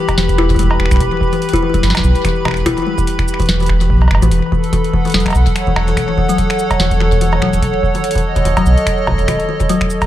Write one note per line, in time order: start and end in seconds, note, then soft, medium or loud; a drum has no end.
0.00 4.31 G4 medium
0.00 5.65 B4 medium
0.00 5.64 B5 medium
0.09 finger snap soft
0.09 kick loud
0.09 closed hi-hat medium
0.09 cowbell medium
0.18 0.77 E1 medium
0.18 0.22 E3 medium
0.18 snare loud
0.18 closed hi-hat medium
0.29 kick loud
0.29 closed hi-hat medium
0.38 0.48 E4 loud
0.38 finger snap medium
0.50 0.53 E3 medium
0.50 kick loud
0.50 closed hi-hat soft
0.56 kick medium
0.56 closed hi-hat soft
0.59 0.66 G3 medium
0.59 kick medium
0.59 closed hi-hat medium
0.71 cowbell loud
0.80 0.89 E1 loud
0.80 finger snap medium
0.86 finger snap medium
0.91 0.99 B1 loud
0.91 finger snap medium
0.91 kick loud
0.91 closed hi-hat soft
0.91 cabasa medium
0.96 finger snap soft
1.00 1.10 E1 loud
1.00 kick loud
1.00 closed hi-hat medium
1.12 1.17 E3 medium
1.21 kick loud
1.33 1.36 E3 medium
1.33 closed hi-hat soft
1.42 closed hi-hat soft
1.49 closed hi-hat soft
1.53 1.61 E4 loud
1.53 kick loud
1.53 closed hi-hat soft
1.56 closed hi-hat medium
1.63 1.67 E3 medium
1.74 1.79 G3 medium
1.74 kick loud
1.74 closed hi-hat medium
1.83 1.93 G1 medium
1.83 snare medium
1.83 closed hi-hat medium
1.90 snare medium
1.95 finger snap medium
1.95 snare loud
1.95 closed hi-hat medium
1.95 cowbell medium
1.99 kick loud
2.04 2.14 B1 medium
2.04 cabasa medium
2.15 closed hi-hat soft
2.25 2.31 E3 medium
2.25 finger snap medium
2.25 kick loud
2.25 closed hi-hat medium
2.45 2.63 E1 medium
2.45 2.49 E3 medium
2.45 finger snap medium
2.45 kick loud
2.45 cowbell medium
2.48 finger snap medium
2.51 finger snap medium
2.54 finger snap soft
2.54 closed hi-hat soft
2.66 2.76 E1 medium
2.66 2.76 E4 loud
2.66 finger snap medium
2.66 kick loud
2.66 closed hi-hat medium
2.78 2.81 E3 medium
2.78 closed hi-hat soft
2.87 2.93 G3 medium
2.98 kick loud
2.98 cabasa medium
3.07 closed hi-hat medium
3.19 finger snap medium
3.19 kick loud
3.19 closed hi-hat soft
3.28 cabasa medium
3.34 finger snap soft
3.40 3.45 E3 medium
3.40 kick loud
3.40 closed hi-hat soft
3.42 closed hi-hat soft
3.46 3.92 E1 loud
3.46 snare loud
3.46 closed hi-hat soft
3.49 closed hi-hat medium
3.60 3.63 E3 medium
3.60 closed hi-hat soft
3.62 closed hi-hat soft
3.66 finger snap soft
3.66 kick loud
3.66 closed hi-hat soft
3.81 3.84 E3 medium
3.81 closed hi-hat soft
3.90 4.08 B1 medium
3.90 kick loud
4.02 cowbell soft
4.08 4.21 G1 loud
4.08 finger snap medium
4.08 kick loud
4.08 cowbell medium
4.15 cowbell medium
4.22 4.30 A1 loud
4.22 4.30 E3 loud
4.22 closed hi-hat soft
4.22 cabasa medium
4.31 4.41 E1 loud
4.31 closed hi-hat medium
4.52 4.59 E3 medium
4.52 10.06 A4 medium
4.52 kick loud
4.64 closed hi-hat soft
4.73 4.77 E3 medium
4.73 kick loud
4.73 closed hi-hat medium
4.84 closed hi-hat soft
4.93 5.00 E3 medium
4.93 8.96 F#5 medium
4.93 kick loud
5.05 5.08 E3 medium
5.05 closed hi-hat soft
5.07 closed hi-hat soft
5.10 closed hi-hat soft
5.12 5.24 E1 medium
5.12 5.21 F#3 medium
5.12 snare loud
5.12 closed hi-hat soft
5.20 closed hi-hat medium
5.26 finger snap medium
5.26 kick loud
5.26 closed hi-hat soft
5.26 cowbell soft
5.28 closed hi-hat soft
5.28 cowbell medium
5.30 cowbell medium
5.33 5.45 B1 medium
5.33 cowbell medium
5.33 cabasa medium
5.46 kick loud
5.46 closed hi-hat soft
5.55 10.06 C#5 medium
5.55 finger snap medium
5.55 closed hi-hat medium
5.67 5.72 E3 medium
5.67 kick loud
5.76 5.94 E1 medium
5.76 finger snap medium
5.76 cowbell loud
5.88 5.91 E3 medium
5.88 closed hi-hat soft
5.97 6.07 E1 loud
5.97 finger snap medium
5.97 kick loud
5.97 closed hi-hat medium
6.09 6.14 E3 medium
6.18 6.22 E3 medium
6.18 kick loud
6.29 6.34 F#3 medium
6.29 closed hi-hat soft
6.29 cabasa medium
6.38 kick loud
6.38 closed hi-hat medium
6.50 finger snap medium
6.50 closed hi-hat soft
6.59 cabasa medium
6.71 finger snap soft
6.71 kick loud
6.71 closed hi-hat medium
6.71 cowbell medium
6.80 7.39 E1 medium
6.80 6.86 E3 medium
6.80 snare loud
6.80 closed hi-hat medium
6.91 kick loud
6.91 closed hi-hat medium
7.00 7.04 E3 medium
7.00 finger snap medium
7.12 kick loud
7.12 closed hi-hat soft
7.21 7.28 E3 medium
7.21 closed hi-hat medium
7.33 7.36 E3 medium
7.33 cowbell loud
7.42 7.52 E1 loud
7.42 7.48 F#3 medium
7.42 finger snap medium
7.42 kick loud
7.53 7.61 E1 loud
7.53 closed hi-hat soft
7.53 cabasa medium
7.63 7.72 E1 medium
7.63 kick loud
7.63 closed hi-hat medium
7.83 kick loud
7.95 8.00 D#3 medium
7.95 closed hi-hat soft
8.04 closed hi-hat medium
8.11 closed hi-hat medium
8.15 8.19 D#3 medium
8.15 kick loud
8.15 closed hi-hat soft
8.18 closed hi-hat soft
8.25 10.06 D#5 medium
8.36 8.41 D#3 medium
8.36 kick loud
8.36 closed hi-hat medium
8.45 8.55 E1 medium
8.45 8.49 D#3 medium
8.45 closed hi-hat medium
8.57 8.62 F#3 medium
8.57 kick loud
8.57 closed hi-hat medium
8.57 cowbell loud
8.66 8.76 B1 medium
8.66 cabasa medium
8.78 closed hi-hat soft
8.87 finger snap medium
8.87 kick loud
8.87 closed hi-hat medium
9.07 9.25 E1 loud
9.07 9.14 D#3 medium
9.07 kick loud
9.07 cowbell loud
9.11 kick medium
9.14 kick medium
9.19 closed hi-hat soft
9.28 9.38 E1 loud
9.28 9.32 D#3 medium
9.28 finger snap medium
9.28 kick loud
9.28 closed hi-hat medium
9.40 closed hi-hat soft
9.49 9.55 D#3 medium
9.60 9.63 D#3 medium
9.60 kick loud
9.60 closed hi-hat soft
9.60 cabasa medium
9.69 9.76 F#3 medium
9.69 closed hi-hat medium
9.81 finger snap medium
9.81 kick loud
9.81 closed hi-hat soft
9.90 cabasa medium
10.02 kick loud
10.02 closed hi-hat medium
10.02 cowbell medium